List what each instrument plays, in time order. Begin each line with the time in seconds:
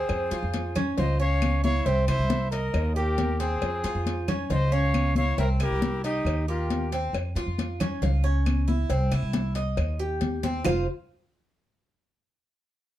Already playing: cuban tres C4, trumpet G#4, flute C5
0.09 upright bass F2, cowbell, high conga, claves
0.31 upright bass F3, cuban tres F4, cowbell, high conga
0.43 upright bass F2
0.54 cowbell, high conga
0.75 cuban tres C#4, cowbell, high conga, low conga, claves
0.98 upright bass C#2, cuban tres F4, trumpet C5, flute D#5, cowbell, high conga, low conga
1.20 cuban tres C#4, trumpet C#5, flute F5, high conga
1.42 cowbell, high conga, claves
1.63 cuban tres E4, trumpet C#5, flute F5, high conga
1.85 upright bass C2, cuban tres C4, trumpet C5, flute E5, cowbell
2.07 upright bass C3, cuban tres E4, trumpet C5, flute E5, cowbell, high conga, claves
2.19 upright bass C2
2.30 cowbell, high conga
2.51 trumpet A#4, flute D#5, cuban tres D#5, cowbell, high conga
2.74 upright bass D#2, cowbell, high conga, claves
2.95 trumpet G4, cuban tres G4, flute A#4, high conga
3.18 cowbell, high conga
3.40 cuban tres C4, trumpet G#4, flute C5, cowbell
3.62 upright bass F2, cowbell, high conga, claves
3.84 upright bass F3, cuban tres F4, cowbell, high conga
3.95 upright bass F2
4.06 cowbell, high conga
4.28 cuban tres C#4, cowbell, high conga, low conga, claves
4.50 upright bass C#2, cuban tres F4, trumpet C5, flute D#5, cowbell, high conga, low conga
4.72 cuban tres C#4, trumpet C#5, flute F5, high conga
4.94 cowbell, high conga, claves
5.15 cuban tres E4, trumpet C#5, flute F5, high conga
5.38 upright bass C2, cuban tres C4, trumpet A#4, flute E5, cowbell, high conga
5.60 upright bass C3, cuban tres E4, trumpet G4, flute A#4, cowbell, high conga, claves
5.71 upright bass C2
5.82 cowbell, high conga
6.04 trumpet D#4, flute G4, cuban tres D#5, cowbell, high conga
6.25 upright bass D#2, cowbell, high conga, claves
6.48 trumpet F4, cuban tres G4, flute A#4, high conga
6.70 cowbell, high conga
6.92 cuban tres C4, cowbell
7.13 upright bass F2, cowbell, high conga, claves
7.35 upright bass F3, cuban tres F4, cowbell, high conga
7.46 upright bass F2
7.58 cowbell, high conga
7.80 cuban tres C#4, cowbell, high conga, low conga, claves
8.02 upright bass C#2, cuban tres F4, cowbell, high conga, low conga
8.24 cuban tres C#4, high conga
8.46 cowbell, high conga, claves
8.68 cuban tres E4, high conga
8.89 upright bass C2, cuban tres C4, cowbell
9.12 upright bass C3, cuban tres E4, cowbell, high conga, claves
9.22 upright bass C2
9.33 cowbell, high conga
9.55 cuban tres D#5, cowbell, high conga
9.77 upright bass D#2, cowbell, high conga, claves
9.99 cuban tres G4, high conga
10.21 cowbell, high conga
10.43 cuban tres C4, cowbell, high conga
10.65 upright bass F1, cuban tres F4 C5 F5, low bongo, low conga, claves